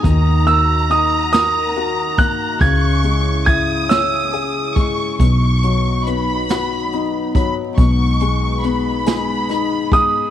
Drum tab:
HH |xxxxxx|xxxxxx|xxxxxx|xxxxxx|
SD |---o--|---o--|---o--|---oo-|
BD |o----o|o-o--o|o----o|o----o|